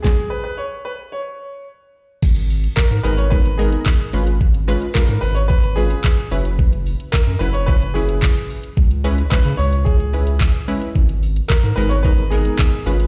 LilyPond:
<<
  \new Staff \with { instrumentName = "Grand piano" } { \time 4/4 \key gis \minor \tempo 4 = 110 gis'8 b'16 b'16 cis''8 b'8 cis''4 r4 | r4 ais'8 b'16 cis''16 b'8 gis'4 r8 | r4 ais'8 b'16 cis''16 b'8 gis'4 r8 | r4 ais'8 b'16 cis''16 b'8 gis'4 r8 |
r4 b'8 cis''8 gis'4. r8 | r4 ais'8 b'16 cis''16 b'8 gis'4 r8 | }
  \new Staff \with { instrumentName = "Synth stab" } { \time 4/4 \key gis \minor r1 | r4. <gis b dis' ais'>8 <gis b dis' ais'>8 <gis b dis' ais'>4 <gis cis' eis' b'>8~ | <gis cis' eis' b'>8 <gis cis' eis' b'>8 <gis cis' eis' b'>4 r8 <gis cis' eis' b'>8 r8 <fis cis' e' b'>8~ | <fis cis' e' b'>4 r8 <fis cis' e' b'>8 <fis cis' e' b'>8 <fis cis' e' b'>4. |
r8 <gis cis' e' b'>8 <gis cis' e' b'>4 r8 <gis cis' e' b'>8 r8 <gis cis' e' b'>8 | r4. <gis b dis' ais'>8 <gis b dis' ais'>8 <gis b dis' ais'>4 <gis cis' eis' b'>8 | }
  \new Staff \with { instrumentName = "Analog synth bass" } { \clef bass \time 4/4 \key gis \minor r1 | gis,,4~ gis,,16 gis,16 gis,,2 gis,,8~ | gis,,4~ gis,,16 gis,16 gis,,2 fis,,8~ | fis,,4~ fis,,16 fis,16 fis,,2~ fis,,8 |
cis,4~ cis,16 cis16 cis,2~ cis,8 | gis,,4~ gis,,16 gis,16 gis,,2 gis,,8 | }
  \new DrumStaff \with { instrumentName = "Drums" } \drummode { \time 4/4 <bd sn>4 r4 r4 r4 | <cymc bd>16 hh16 hho16 hh16 <hc bd>16 hh16 hho16 hh16 bd16 hh16 hho16 hh16 <hc bd>16 hh16 hho16 hh16 | bd16 hh16 hho16 hh16 <hc bd>16 hh16 hho16 hh16 bd16 hh16 hho16 hh16 <hc bd>16 hh16 hho16 hh16 | bd16 hh16 hho16 hh16 <hc bd>16 hh16 hho16 hh16 bd16 hh16 hho16 hh16 <hc bd>16 hh16 hho16 hh16 |
bd16 hh16 hho16 hh16 <hc bd>16 hh16 hho16 hh16 bd16 hh16 hho16 hh16 <hc bd>16 hh16 hho16 hh16 | bd16 hh16 hho16 hh16 <hc bd>16 hh16 hho16 hh16 bd16 hh16 hho16 hh16 <hc bd>16 hh16 hho16 hh16 | }
>>